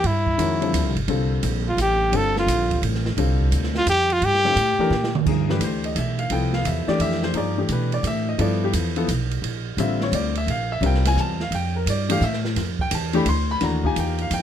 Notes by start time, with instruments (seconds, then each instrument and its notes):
0.04 upright bass G2, trumpet E4, ride
0.27 kick
0.38 upright bass F2, grand piano D#3 G#3 C#4 F#4 A#4, hi-hat pedal, ride
0.61 grand piano D3 F3 G3 C4 A4, ride
0.73 upright bass D2, hi-hat pedal, ride
0.85 upright bass C2
0.96 upright bass G1, ride
1.08 upright bass C2, grand piano D3 G3 C4 F4 A4, ride
1.43 upright bass A#1, hi-hat pedal, ride
1.68 trumpet F4
1.77 upright bass A1, hi-hat pedal, ride
1.81 trumpet G4
2.12 upright bass G1, grand piano D3 G3 C4 F4 A4, ride
2.16 trumpet A4
2.36 trumpet F4, snare
2.47 upright bass A#1, hi-hat pedal, ride
2.71 kick, ride
2.82 upright bass A1, ride
2.95 snare
3.06 snare
3.17 upright bass C2, grand piano D3 G3 C4 F4 A4, ride
3.40 kick
3.51 upright bass D2, hi-hat pedal, ride
3.63 snare
3.75 trumpet F4, snare
3.86 upright bass F2, trumpet G4, hi-hat pedal, ride
4.10 trumpet F4, ride
4.21 upright bass G2, trumpet G4, ride
4.34 snare
4.44 grand piano D3 G3 C4 F4 A4, snare
4.56 upright bass A2, hi-hat pedal, ride
4.78 grand piano E3 A3 D4 G4 A#4, muted upright bass stroke
4.90 upright bass A#2, snare
5.04 snare
5.15 mid tom
5.25 upright bass G2, grand piano F3 A#3 D#4 G#4, kick, crash
5.49 grand piano E3 A3 D4 G4 B4, snare
5.60 upright bass D2, hi-hat pedal, ride
5.64 grand piano C5
5.84 grand piano D#5, ride
5.96 upright bass B1, grand piano E5, hi-hat pedal, ride
6.19 grand piano F5, ride
6.30 upright bass C2, grand piano F3 B3 E4 A4 G5, ride
6.53 grand piano F5, snare
6.65 upright bass E2, grand piano E5, hi-hat pedal, ride
6.87 grand piano E3 A3 D4 G4 D5, muted upright bass stroke, snare
6.99 upright bass F2, grand piano E5, ride
7.12 snare
7.23 grand piano C5, snare
7.34 upright bass G2, grand piano F3 A#3 D#4 G#4 D5, ride
7.57 grand piano E3 A3 D4 G4
7.69 upright bass B2, grand piano B4, hi-hat pedal, ride
7.92 grand piano D5, ride
8.03 upright bass A2, hi-hat pedal, ride
8.07 grand piano E5
8.29 grand piano D#5
8.38 upright bass G2, grand piano F3 B3 E4 A4 D5, ride
8.64 grand piano G4
8.73 upright bass E2, hi-hat pedal, ride
8.96 grand piano F3 B3 E4 A4, ride
9.08 upright bass B1, hi-hat pedal, ride
9.31 ride
9.42 upright bass A#1, ride
9.77 upright bass A1, grand piano D3 G3 C4 F4 E5, hi-hat pedal, ride
10.01 grand piano C#5, snare
10.11 upright bass D2, grand piano C#5, hi-hat pedal, ride
10.15 grand piano D5
10.35 grand piano E5, ride
10.47 upright bass A#1, grand piano F5, ride
10.72 grand piano E5
10.81 upright bass C2, grand piano G3 C4 F4 A#4, ride
10.86 grand piano G5
10.94 snare
11.05 grand piano G#5, snare, ride
11.16 upright bass E2, hi-hat pedal
11.20 grand piano A5
11.40 grand piano F5, snare
11.51 upright bass F2, grand piano G5, ride
11.76 grand piano A#4
11.86 upright bass G2, grand piano D5, hi-hat pedal, ride
12.09 grand piano E3 A3 D4 G4 F5, ride
12.21 upright bass A2, grand piano E5, hi-hat pedal
12.33 snare
12.45 snare
12.56 upright bass F2, snare, ride
12.79 grand piano G5, kick
12.91 upright bass E2, grand piano A5, hi-hat pedal, ride
13.13 grand piano E3 A3 D4 G4 B5, ride
13.26 upright bass D2, grand piano C6, ride
13.51 grand piano B5
13.61 upright bass D#2, grand piano E3 A3 D4 F#4 A#5, snare, ride
13.84 grand piano A#3 D#4 F4 G4 G#5, kick
13.96 upright bass E2, grand piano G5, hi-hat pedal, ride
14.19 grand piano F5, ride
14.31 upright bass F2, grand piano G5, hi-hat pedal, ride